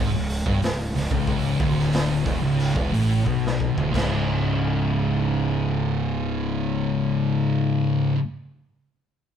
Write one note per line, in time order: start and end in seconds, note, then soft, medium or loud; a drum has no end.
0.00 0.12 G#1 medium
0.00 0.13 G#2 loud
0.14 0.44 C#1 medium
0.14 0.39 C#2 medium
0.30 open hi-hat medium
0.46 0.61 G1 loud
0.46 0.61 G2 loud
0.46 kick loud
0.62 0.92 C#1 medium
0.62 0.89 C#2 medium
0.62 snare loud
0.62 open hi-hat medium
0.94 1.10 C#1 medium
0.94 1.09 C#2 medium
0.94 snare soft
0.94 open hi-hat medium
1.11 1.56 C#1 loud
1.11 1.59 C#2 loud
1.11 kick loud
1.27 kick loud
1.27 open hi-hat medium
1.59 2.21 D1 loud
1.59 2.24 D2 loud
1.59 kick loud
1.59 open hi-hat medium
1.79 snare soft
1.93 snare loud
1.93 open hi-hat medium
2.24 2.41 E1 loud
2.24 2.41 E2 loud
2.24 kick loud
2.24 open hi-hat medium
2.41 2.73 C#1 loud
2.41 2.74 C#2 loud
2.60 open hi-hat medium
2.74 2.91 E1 medium
2.74 2.91 E2 loud
2.74 kick loud
2.91 3.23 A1 loud
2.91 3.24 A2 loud
2.91 open hi-hat medium
3.24 3.73 B1 medium
3.24 3.74 B2 loud
3.24 kick medium
3.47 snare medium
3.60 kick medium
3.75 3.92 D1 loud
3.75 3.91 D2 loud
3.75 floor tom medium
3.91 8.12 C#1 loud
3.91 8.13 C#2 medium
3.91 8.14 G#2 loud
3.91 8.14 C#3 loud
3.91 8.15 G#3 loud
3.91 kick loud
3.91 crash medium
3.96 8.17 E4 loud
3.96 snare loud